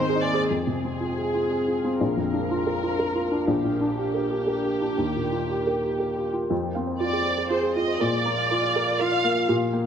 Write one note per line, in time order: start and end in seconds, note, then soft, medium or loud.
0.00 0.46 G#2 medium
0.00 0.52 D#3 medium
0.00 0.47 C4 medium
0.00 0.51 C4 medium
0.00 0.15 D#4 medium
0.00 0.47 G#4 medium
0.00 0.23 C5 medium
0.00 0.20 D#5 medium
0.00 0.50 D#5 medium
0.10 0.18 G#4 medium
0.15 0.43 D#4 soft
0.22 0.49 D5 medium
0.22 0.31 G#5 medium
0.33 0.50 G#4 medium
0.33 0.43 C5 medium
0.48 1.96 F2 soft
0.48 1.95 C4 medium
0.48 1.95 G#4 soft
0.48 3.44 F5 medium
0.67 0.93 C3 soft
0.84 1.10 C4 soft
1.00 1.27 F4 soft
1.17 1.43 G#4 soft
1.34 1.60 F4 soft
1.51 1.77 G#4 soft
1.68 1.94 F4 soft
1.84 2.00 C4 soft
1.99 3.45 A#1 soft
1.99 4.98 D4 medium
1.99 3.44 A#4 medium
1.99 6.50 A#4 medium
2.17 2.43 F2 soft
2.34 2.60 D4 soft
2.51 2.77 F4 soft
2.67 2.93 A#4 soft
2.83 3.09 F4 soft
2.99 3.25 A#4 soft
3.15 3.42 F4 soft
3.32 3.48 D4 soft
3.47 4.94 A#1 soft
3.47 6.26 G4 medium
3.47 6.51 G5 medium
3.64 3.91 A#2 soft
3.81 4.08 D4 soft
3.98 4.24 G4 soft
4.14 4.41 A#4 soft
4.30 4.57 G4 soft
4.47 4.74 A#4 soft
4.64 4.91 G4 soft
4.82 4.99 D4 soft
4.98 6.46 D#2 soft
4.98 6.50 F4 medium
5.16 5.43 A#2 soft
5.32 5.59 F4 soft
5.50 5.76 G4 soft
5.67 5.93 A#4 soft
5.83 6.10 G4 soft
6.00 6.27 A#4 soft
6.16 6.44 G4 soft
6.33 6.50 F4 soft
6.50 7.97 F2 soft
6.50 6.58 F4 medium
6.50 9.45 F4 medium
6.50 7.97 G#4 medium
6.50 9.45 F5 medium
6.75 7.16 C4 soft
6.75 6.83 F5 medium
6.87 6.95 C5 soft
7.00 7.08 F4 medium
7.00 7.41 F4 soft
7.00 7.47 D5 medium
7.13 7.21 G#4 medium
7.25 7.33 C5 medium
7.25 7.66 C5 soft
7.38 7.46 G#4 medium
7.50 7.58 F4 medium
7.50 7.91 G#4 soft
7.50 7.76 C5 medium
7.63 7.70 G#4 soft
7.76 8.01 F4 soft
7.76 8.00 D#5 medium
7.88 7.95 C5 medium
8.00 9.45 A#2 medium
8.00 8.08 A#4 medium
8.00 9.86 A#4 medium
8.00 9.00 D5 medium
8.26 8.66 A#3 soft
8.26 8.33 A#5 medium
8.38 8.45 F5 medium
8.51 8.90 F4 soft
8.51 8.58 A#4 medium
8.62 8.70 D5 medium
8.75 9.15 A#4 soft
8.75 8.82 F5 medium
8.87 8.94 D5 medium
8.99 9.40 F4 medium
8.99 9.07 A#4 medium
8.99 9.49 F5 medium
9.12 9.19 D5 medium
9.24 9.49 A#3 soft
9.36 9.44 F5 medium
9.49 9.86 A#2 medium
9.49 9.56 G4 medium
9.73 9.86 A#3 soft
9.73 9.81 G5 medium